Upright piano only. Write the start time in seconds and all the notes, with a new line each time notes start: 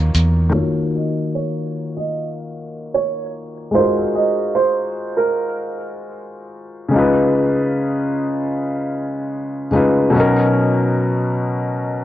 0.55 C#5
0.95 D#5
1.35 C#5
1.97 D#5
2.94 C#5
3.75 C5
4.15 D#5
4.55 C5
5.17 A#4